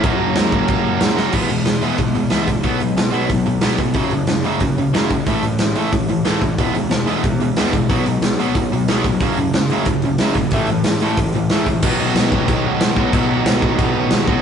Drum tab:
CC |x-x-x-x-|x-------|--------|--------|
HH |--------|-ooooooo|oooooooo|oooooooo|
SD |--o---oo|--o---o-|--o---o-|--o---o-|
BD |o--oo---|o---o--o|o---o--o|o---o--o|

CC |--------|--------|--------|--------|
HH |oooooooo|oooooooo|oooooooo|oooooooo|
SD |--o---o-|--o---o-|--o---o-|--o---o-|
BD |o---o--o|o---o--o|o---o--o|o---o--o|

CC |--------|x-x-x-x-|x-x-x-x-|
HH |oooooooo|--------|--------|
SD |--o---o-|--o---o-|--o---o-|
BD |o---o--o|o--oo--o|o--oo--o|